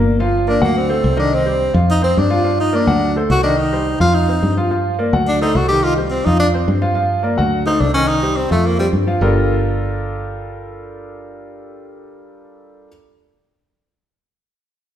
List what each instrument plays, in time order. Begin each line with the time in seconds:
Already playing: fingered electric bass G1, grand piano A#3 A#4
0.19 grand piano F3 F4 F5
0.48 grand piano A#3 A#4 D5, tenor saxophone D4
0.61 fingered electric bass D2, grand piano F#3 F#4 F#5, tenor saxophone A#3
0.77 tenor saxophone C4
0.89 grand piano A3 A4 C5
1.04 fingered electric bass C2
1.16 grand piano D#3 D#4 D#5, tenor saxophone D4
1.34 tenor saxophone C4
1.46 grand piano G3 G4 C5
1.74 fingered electric bass F2, grand piano F3 F4 F5
1.91 tenor saxophone D#4
2.02 grand piano C4 C5, tenor saxophone C4
2.17 fingered electric bass G2, tenor saxophone D4
2.30 grand piano F3 F4 F5
2.44 grand piano F3 F4 F5
2.60 tenor saxophone D#4
2.73 grand piano A#3 A#4 D5, tenor saxophone D4
2.87 fingered electric bass D2, grand piano F#3 F#4 F#5
3.16 grand piano A3 A4 C5
3.30 fingered electric bass C2, tenor saxophone F#4
3.43 grand piano D#3 D#4 D#5, tenor saxophone D4
3.58 tenor saxophone D#4
3.72 grand piano G3 G4 C5
4.00 fingered electric bass F2, grand piano F3 F4 F5, tenor saxophone F4
4.14 tenor saxophone D#4
4.28 grand piano C4 C5
4.43 fingered electric bass G2
4.57 grand piano F3 F4 F5
4.71 grand piano F3 F4 F5
4.99 grand piano A#3 A#4 D5
5.13 fingered electric bass D2, grand piano F#3 F#4 F#5
5.28 tenor saxophone D4
5.41 grand piano A3 A4 C5, tenor saxophone D#4
5.55 fingered electric bass C2, tenor saxophone F#4
5.69 grand piano D#3 D#4 D#5, tenor saxophone G4
5.84 tenor saxophone F4
5.97 grand piano G3 G4 C5, tenor saxophone A3
6.10 tenor saxophone C4
6.25 fingered electric bass F2, grand piano F3 F4 F5, tenor saxophone D#4
6.40 tenor saxophone D4
6.54 grand piano C4 C5
6.68 fingered electric bass G2
6.82 grand piano F3 F4 F5
6.95 grand piano F3 F4 F5
7.23 grand piano A#3 A#4 D5
7.37 fingered electric bass D2, grand piano F#3 F#4 F#5
7.66 grand piano A3 A4 C5, tenor saxophone D#4
7.80 fingered electric bass C2, tenor saxophone D4
7.94 grand piano D#3 D#4 D#5, tenor saxophone C#4
8.08 tenor saxophone D#4
8.22 grand piano G3 G4 C5
8.37 tenor saxophone C4
8.50 fingered electric bass F2, grand piano F3 F4 F5, tenor saxophone A3
8.66 tenor saxophone A#3
8.79 tenor saxophone G3, grand piano C4 C5
8.93 fingered electric bass G2
9.07 grand piano F3 F4 F5
9.21 fingered electric bass G1, grand piano G3 D4 F4 G4 A4 A#4